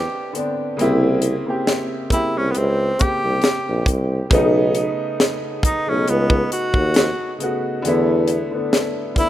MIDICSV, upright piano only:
0, 0, Header, 1, 2, 480
1, 0, Start_track
1, 0, Tempo, 882353
1, 423, Time_signature, 4, 2, 24, 8
1, 5056, End_track
2, 0, Start_track
2, 0, Title_t, "Upright piano"
2, 0, Program_c, 0, 0
2, 0, Control_c, 0, 64, 127
2, 0, Note_on_c, 0, 50, 62
2, 0, Note_on_c, 0, 60, 60
2, 0, Note_on_c, 0, 62, 71
2, 0, Note_on_c, 0, 71, 59
2, 179, Note_off_c, 0, 50, 0
2, 179, Note_on_c, 0, 50, 74
2, 189, Note_on_c, 0, 59, 60
2, 196, Note_off_c, 0, 60, 0
2, 196, Note_on_c, 0, 60, 62
2, 205, Note_off_c, 0, 62, 0
2, 205, Note_on_c, 0, 62, 80
2, 373, Note_off_c, 0, 50, 0
2, 378, Note_off_c, 0, 59, 0
2, 381, Note_off_c, 0, 60, 0
2, 386, Note_off_c, 0, 62, 0
2, 417, Note_on_c, 0, 49, 93
2, 427, Note_on_c, 0, 58, 90
2, 430, Control_c, 0, 64, 0
2, 431, Note_off_c, 0, 71, 0
2, 436, Note_on_c, 0, 60, 89
2, 442, Note_on_c, 0, 64, 113
2, 521, Control_c, 0, 64, 127
2, 703, Note_off_c, 0, 49, 0
2, 708, Note_off_c, 0, 58, 0
2, 712, Note_off_c, 0, 60, 0
2, 716, Note_off_c, 0, 64, 0
2, 790, Note_on_c, 0, 49, 68
2, 798, Note_on_c, 0, 58, 59
2, 807, Note_on_c, 0, 60, 67
2, 816, Note_on_c, 0, 67, 76
2, 1067, Note_off_c, 0, 49, 0
2, 1072, Note_off_c, 0, 58, 0
2, 1076, Note_off_c, 0, 60, 0
2, 1081, Note_off_c, 0, 67, 0
2, 1138, Note_on_c, 0, 49, 61
2, 1147, Note_on_c, 0, 58, 60
2, 1156, Note_on_c, 0, 60, 53
2, 1164, Note_on_c, 0, 67, 76
2, 1524, Note_off_c, 0, 49, 0
2, 1528, Note_off_c, 0, 58, 0
2, 1533, Note_off_c, 0, 60, 0
2, 1536, Note_off_c, 0, 67, 0
2, 1618, Note_on_c, 0, 49, 56
2, 1626, Note_on_c, 0, 58, 53
2, 1635, Note_on_c, 0, 60, 54
2, 1645, Note_on_c, 0, 67, 69
2, 2186, Note_off_c, 0, 49, 0
2, 2190, Note_off_c, 0, 58, 0
2, 2195, Note_off_c, 0, 60, 0
2, 2200, Note_off_c, 0, 67, 0
2, 2338, Note_on_c, 0, 49, 101
2, 2347, Note_on_c, 0, 57, 91
2, 2351, Control_c, 0, 64, 0
2, 2355, Note_on_c, 0, 59, 93
2, 2364, Note_on_c, 0, 63, 120
2, 2459, Control_c, 0, 64, 127
2, 2998, Note_off_c, 0, 49, 0
2, 3003, Note_off_c, 0, 57, 0
2, 3007, Note_off_c, 0, 59, 0
2, 3011, Note_off_c, 0, 63, 0
2, 3189, Note_on_c, 0, 49, 67
2, 3198, Note_on_c, 0, 57, 61
2, 3208, Note_on_c, 0, 59, 61
2, 3217, Note_on_c, 0, 63, 74
2, 3835, Note_off_c, 0, 49, 0
2, 3840, Note_off_c, 0, 57, 0
2, 3845, Note_off_c, 0, 59, 0
2, 3849, Note_off_c, 0, 63, 0
2, 4017, Note_on_c, 0, 49, 70
2, 4027, Note_on_c, 0, 57, 64
2, 4036, Note_on_c, 0, 59, 66
2, 4045, Note_on_c, 0, 66, 81
2, 4212, Note_off_c, 0, 49, 0
2, 4217, Note_off_c, 0, 57, 0
2, 4221, Note_off_c, 0, 59, 0
2, 4225, Note_off_c, 0, 66, 0
2, 4256, Note_on_c, 0, 50, 100
2, 4266, Note_on_c, 0, 57, 88
2, 4269, Control_c, 0, 64, 0
2, 4274, Note_on_c, 0, 59, 85
2, 4284, Note_on_c, 0, 64, 100
2, 4360, Control_c, 0, 64, 127
2, 4542, Note_off_c, 0, 50, 0
2, 4547, Note_off_c, 0, 57, 0
2, 4551, Note_off_c, 0, 59, 0
2, 4556, Note_off_c, 0, 64, 0
2, 4630, Note_on_c, 0, 50, 73
2, 4640, Note_on_c, 0, 57, 61
2, 4647, Note_on_c, 0, 59, 63
2, 4657, Note_on_c, 0, 62, 68
2, 4908, Note_off_c, 0, 50, 0
2, 4913, Note_off_c, 0, 57, 0
2, 4916, Note_off_c, 0, 59, 0
2, 4921, Note_off_c, 0, 62, 0
2, 4974, Note_on_c, 0, 50, 60
2, 4982, Note_on_c, 0, 57, 58
2, 4992, Note_on_c, 0, 59, 57
2, 5000, Note_on_c, 0, 64, 73
2, 5056, Note_off_c, 0, 50, 0
2, 5056, Note_off_c, 0, 57, 0
2, 5056, Note_off_c, 0, 59, 0
2, 5056, Note_off_c, 0, 64, 0
2, 5056, End_track
0, 0, End_of_file